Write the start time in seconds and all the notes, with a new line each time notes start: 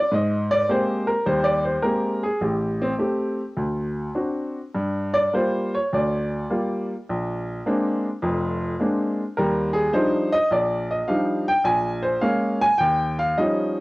Already playing: D5
0.12 G#2 D#5
0.51 D5
0.69 G#3 A#3 C4 G4 C5
1.07 A#4
1.26 D#2 G3 C5
1.44 D5
1.65 C5
1.82 G#3 A#3 C4 G4 A#4
2.23 G#4
2.41 A1 G4
2.82 C4
2.98 A3 C4 G4
3.57 D2
4.15 C4 D4 F#4
4.75 G2
5.14 D5
5.33 G3 A#3 F4 C5
5.75 C#5
5.93 D2 D5
6.50 G3 A#3 F4
7.09 A#1
7.66 G#3 A#3 C4 D4
8.22 F1 F2
8.80 G#3 A#3 C4 D4
9.37 D#2 G3 A#4
9.73 G#4
9.93 F3 G3 D4 D#4 C5
10.33 D#5
10.51 A#1 D5
10.91 D#5
11.08 F3 G3 D4 D#4 F5
11.48 G5
11.64 A#1 G#5
12.03 C5
12.21 G#3 A#3 C#4 F5
12.61 G#5
12.78 D#2 G5
13.19 F5
13.38 F3 G3 C#4 D#4 D#5